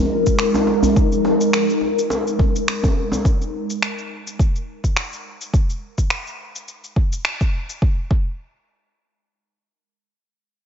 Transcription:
0.00 3.21 G#3 medium
0.00 3.21 D#4 medium
0.00 3.21 A#4 medium
0.26 kick medium
0.26 shaker medium
0.39 finger snap medium
0.39 shaker soft
0.54 djembe slap soft
0.54 djembe tone medium
0.54 shaker soft
0.67 djembe slap soft
0.82 djembe bass medium
0.82 shaker medium
0.96 kick loud
0.96 shaker soft
1.12 shaker soft
1.25 djembe slap medium
1.41 shaker medium
1.53 finger snap medium
1.53 shaker soft
1.70 shaker soft
1.81 djembe slap soft
1.99 shaker medium
2.10 djembe slap medium
2.10 shaker soft
2.27 shaker soft
2.39 kick medium
2.39 djembe tone medium
2.56 shaker medium
2.68 finger snap medium
2.68 shaker soft
2.83 kick medium
2.83 djembe tone medium
2.83 shaker soft
3.12 djembe slap soft
3.12 djembe tone soft
3.12 shaker medium
3.25 kick loud
3.25 shaker soft
3.42 shaker soft
3.70 shaker medium
3.82 finger snap medium
3.82 shaker soft
3.98 shaker soft
4.27 shaker medium
4.39 kick medium
4.39 shaker soft
4.56 shaker soft
4.84 kick medium
4.84 shaker medium
4.97 finger snap medium
4.97 shaker soft
5.13 shaker soft
5.41 shaker medium
5.54 kick loud
5.54 shaker soft
5.70 shaker soft
5.98 kick medium
5.98 shaker medium
6.10 finger snap medium
6.10 shaker soft
6.27 shaker soft
6.55 shaker medium
6.68 shaker soft
6.84 shaker soft
6.96 kick medium
7.12 shaker medium
7.25 finger snap medium
7.25 shaker soft
7.41 kick medium
7.41 shaker soft
7.70 shaker medium
7.82 kick loud
8.11 kick loud

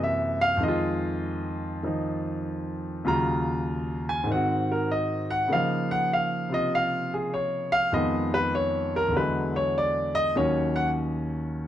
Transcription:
0.00 0.59 F#2 medium
0.00 0.65 C3 medium
0.00 0.61 E3 medium
0.00 0.63 A#3 medium
0.00 0.42 E5 medium
0.41 0.61 F5 loud
0.57 3.03 F2 medium
0.57 1.82 D#3 medium
0.63 3.07 G#3 medium
0.63 2.41 D#5 medium
0.68 3.05 F4 medium
1.83 3.05 D#3 soft
1.83 3.06 F3 soft
1.83 3.07 D#4 medium
3.05 4.27 D#2 medium
3.05 4.27 C#3 medium
3.05 4.27 F#3 medium
3.05 4.28 F4 medium
3.05 4.04 A#5 medium
4.09 4.28 G#5 medium
4.24 5.47 G#2 medium
4.24 5.49 D#3 medium
4.31 5.51 C4 medium
4.31 5.52 F#4 medium
4.31 4.69 F#5 medium
4.72 4.89 A#4 medium
4.91 5.29 D#5 medium
5.30 5.49 F#5 loud
5.48 7.92 C#3 medium
5.48 7.93 A#3 soft
5.48 7.94 D#4 soft
5.53 7.94 F3 medium
5.53 5.90 F5 medium
5.91 6.10 F#5 loud
6.13 6.51 F5 medium
6.49 7.92 C3 soft
6.49 7.93 F4 medium
6.54 6.72 D#5 medium
6.75 7.12 F5 loud
7.14 7.32 G#4 medium
7.34 7.72 C#5 medium
7.72 7.92 F5 loud
7.92 9.14 F2 medium
7.92 9.14 D#3 medium
7.92 9.14 G#3 medium
7.92 9.15 B3 medium
7.92 8.32 D#5 medium
8.34 8.53 B4 medium
8.55 8.93 C#5 medium
8.96 9.15 A#4 medium
9.08 10.33 E2 soft
9.08 10.34 D3 soft
9.15 10.35 F#3 soft
9.15 10.38 G#3 medium
9.15 9.54 B4 medium
9.56 9.75 C#5 medium
9.78 10.15 D5 medium
10.15 10.35 D#5 loud
10.35 11.67 D#2 medium
10.35 11.67 D#3 medium
10.35 11.67 F#3 medium
10.35 11.67 C#4 medium
10.35 10.75 C#5 medium
10.76 10.88 F#5 loud

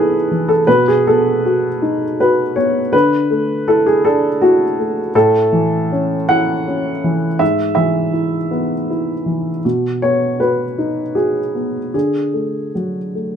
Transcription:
0.00 0.62 G#2 medium
0.00 0.31 E3 soft
0.00 0.15 B3 soft
0.00 0.69 E4 soft
0.00 0.48 G#4 medium
0.00 0.49 A4 medium
0.00 0.67 B4 medium
0.00 0.68 C#5 medium
0.31 0.67 E3 soft
0.49 0.67 A4 medium
0.67 2.90 B2 medium
0.67 0.85 B4 medium
0.88 1.05 G#4 medium
1.07 1.67 B3 soft
1.07 2.19 A4 medium
1.45 2.04 F#4 soft
1.82 2.42 D#4 soft
2.20 2.80 F#4 soft
2.20 2.57 B4 medium
2.56 2.93 B3 soft
2.56 2.93 C#5 medium
2.93 5.10 D3 medium
2.93 3.67 B4 medium
3.30 3.89 A3 soft
3.68 4.26 E4 soft
3.68 3.86 A4 medium
3.86 4.04 G#4 medium
4.04 4.62 D4 soft
4.04 4.40 A4 medium
4.42 5.00 E4 soft
4.42 5.14 F#4 medium
4.79 5.15 A3 soft
5.15 7.37 A2 medium
5.15 6.30 A4 medium
5.52 6.14 E3 soft
5.92 6.53 C#4 medium
6.29 6.89 E4 soft
6.29 7.40 F#5 medium
6.68 7.26 C#4 soft
7.04 7.40 E3 soft
7.39 9.59 G#2 medium
7.39 7.73 E5 medium
7.75 8.36 E3 soft
7.75 9.63 E5 medium
8.13 8.73 E4 soft
8.51 9.11 B3 soft
8.90 9.49 E4 soft
9.26 9.63 E3 soft
9.65 11.90 B2 soft
10.02 10.63 B3 soft
10.02 10.40 C#5 medium
10.40 11.01 F#4 soft
10.40 11.16 B4 medium
10.78 11.39 D#4 soft
11.15 11.78 F#4 soft
11.15 11.93 G#4 medium
11.55 11.94 B3 soft
11.94 13.36 D3 soft
11.94 12.73 G#4 soft
12.33 12.97 A3 soft
12.75 13.36 F#3 soft
12.75 13.36 F#4 soft
13.15 13.36 A3 soft

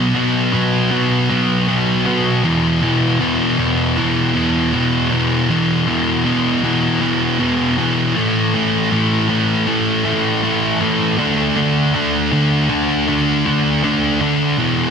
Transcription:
0.00 0.13 B2 medium
0.00 0.13 F#3 medium
0.00 0.15 B3 medium
0.14 0.51 B2 medium
0.14 0.52 F#3 medium
0.14 0.53 B3 medium
0.52 0.89 B2 medium
0.52 0.90 F#3 loud
0.52 0.91 B3 loud
0.91 1.28 B2 medium
0.91 1.29 F#3 medium
0.91 1.30 B3 medium
1.29 1.67 B2 medium
1.29 1.67 F#3 medium
1.29 1.68 B3 medium
1.68 2.04 B2 medium
1.68 2.05 F#3 medium
1.68 2.06 B3 loud
2.05 2.41 B2 medium
2.05 2.42 F#3 medium
2.05 5.56 B3 medium
2.43 2.81 E2 medium
2.43 2.81 B2 medium
2.43 2.82 E3 medium
2.82 3.19 E2 medium
2.82 3.19 B2 medium
2.82 3.20 E3 medium
3.19 3.57 E2 medium
3.19 3.57 B2 medium
3.19 3.58 E3 medium
3.58 3.96 E2 medium
3.58 3.96 B2 loud
3.58 3.97 E3 loud
3.97 4.34 E2 medium
3.97 4.34 B2 medium
3.97 4.35 E3 medium
4.35 4.72 E2 medium
4.35 4.72 B2 medium
4.35 4.74 E3 medium
4.73 5.09 E2 medium
4.73 5.10 B2 medium
4.73 5.11 E3 loud
5.10 5.49 E2 medium
5.10 5.49 B2 medium
5.10 5.50 E3 loud
5.50 5.86 E2 medium
5.50 5.87 B2 loud
5.50 5.87 E3 medium
5.87 6.24 E2 medium
5.87 6.24 B2 medium
5.87 6.26 E3 medium
6.25 6.62 E2 medium
6.25 6.63 B2 medium
6.25 6.64 E3 medium
6.63 7.00 E2 loud
6.63 7.00 B2 loud
6.63 7.02 E3 loud
7.01 7.38 E2 medium
7.01 7.38 B2 medium
7.01 7.40 E3 medium
7.39 7.76 E2 medium
7.39 7.77 B2 medium
7.39 7.78 E3 medium
7.77 8.12 E2 medium
7.77 8.13 B2 loud
7.77 8.16 E3 loud
8.15 8.52 A2 loud
8.15 8.53 E3 loud
8.15 8.54 A3 loud
8.54 8.90 A2 loud
8.54 8.92 E3 loud
8.54 8.92 A3 loud
8.91 9.28 A2 medium
8.91 9.29 E3 medium
8.91 9.29 A3 medium
9.29 9.65 A2 medium
9.29 9.66 E3 medium
9.29 9.67 A3 medium
9.67 10.03 A2 medium
9.67 10.04 E3 loud
9.67 10.04 A3 loud
10.04 10.41 A2 medium
10.04 10.43 E3 medium
10.04 10.43 A3 medium
10.43 10.79 A2 medium
10.43 10.80 E3 medium
10.43 10.80 A3 medium
10.80 11.15 A2 loud
10.80 11.18 E3 medium
10.80 11.16 A3 loud
11.18 11.55 D3 medium
11.18 11.55 A3 medium
11.18 11.56 D4 loud
11.56 11.93 D3 loud
11.56 11.93 A3 loud
11.56 11.94 D4 loud
11.94 12.31 D3 medium
11.94 12.31 A3 medium
11.94 12.31 D4 medium
12.32 12.68 D3 medium
12.32 12.68 A3 medium
12.32 12.69 D4 loud
12.69 13.06 D3 loud
12.69 13.07 A3 loud
12.69 13.07 D4 loud
13.07 13.44 D3 medium
13.07 13.45 A3 medium
13.07 13.45 D4 loud
13.45 13.82 D3 medium
13.45 13.82 A3 medium
13.45 13.83 D4 medium
13.83 14.20 D3 medium
13.83 14.20 A3 loud
13.83 14.20 D4 loud
14.21 14.56 D3 medium
14.21 14.56 A3 loud
14.21 14.56 D4 loud
14.59 14.90 E2 loud
14.59 14.90 B2 loud
14.59 14.90 E3 loud

